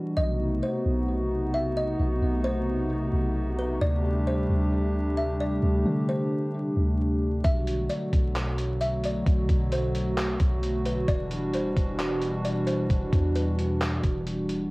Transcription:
Already playing: B2 E3 G3 D4 F#4
0.17 B1 C3 A3 B3 D#4 F#4 D#5
0.63 C5
0.86 B1
1.54 E5
1.77 D#5
1.99 B1
2.22 B1
2.44 C5
3.13 B1
3.59 B4
3.81 D2 G3 D4 G4 D5
4.27 C5
4.49 D2
5.17 E5
5.40 D5
5.63 D2
5.86 D3
6.09 C5
6.77 D2
7.44 B1 B2 D3 F#3 F#4 E5, kick, closed hi-hat
7.67 closed hi-hat
7.89 D5, closed hi-hat
8.13 B1, kick, closed hi-hat
8.35 clap, closed hi-hat
8.58 closed hi-hat
8.81 E5, closed hi-hat
9.04 D5, closed hi-hat
9.26 B1, kick, closed hi-hat
9.49 B1, kick, closed hi-hat
9.72 C5, closed hi-hat
9.95 closed hi-hat
10.17 clap, closed hi-hat
10.40 B1, kick, closed hi-hat
10.63 closed hi-hat
10.86 B4, closed hi-hat
11.08 E1 B2 E3 G3 D4 D5, kick, closed hi-hat
11.31 closed hi-hat
11.53 C5, closed hi-hat
11.76 E1, kick, closed hi-hat
11.99 clap, closed hi-hat
12.22 closed hi-hat
12.45 D5, closed hi-hat
12.67 C5, closed hi-hat
12.90 E1, kick, closed hi-hat
13.13 E2, kick, closed hi-hat
13.35 B4, closed hi-hat
13.59 closed hi-hat
13.81 clap, closed hi-hat
14.03 E1, kick, closed hi-hat
14.27 closed hi-hat
14.49 closed hi-hat

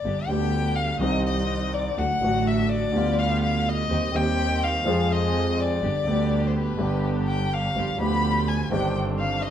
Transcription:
Already playing: D5
0.03 G1 G2 D3 G3 B3 D4 G4
0.28 D2 D3 G3 B3 D4 G4 G5
0.32 G4
0.75 F5
0.99 C2 C3 D#3 G3 C4 D#4 D#5
1.26 D#5
1.74 D5
1.97 D2 D3 F#3 A3 D4 F#4 F#5
2.20 A1 A2 D3 F#3 A3 D4 F#4
2.24 F#4
2.47 E5
2.69 D5
2.92 D2 D3 G3 B3 F4 G4
2.96 F4
3.19 F5
3.44 F5
3.69 D#5
3.89 D#2 D#3 G3 C4 D#4 G4
4.12 D#2 D#3 G3 C4 D#4 G4
4.16 G4 G5
4.64 F5
4.85 F2 F3 G#3 C4 F4 G#4
5.12 D#5
5.60 D5
5.81 G1 G2 D3 G3 B3 D4 G4
6.06 D2 D3 G3 B3 D4 G4
6.47 C5
6.57 B4
6.77 G1 G2 D3 G3 B3 D4 G4
7.28 G5
7.53 F5
7.74 G1 G2 F3 B3 D4 F4 G4
7.98 D2 D3 F3 B3 D4 F4 G4 B5
8.02 G4
8.48 G#5
8.70 G1 G2 D#3 C4 D4 G4 G5
9.19 F5
9.43 D#5

